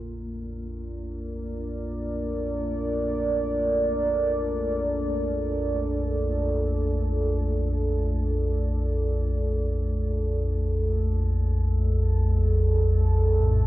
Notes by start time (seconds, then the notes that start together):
Already playing: A#1 F2 A#2 A#3 F4 A4 A#4 D5
13.40 A2
13.51 C#5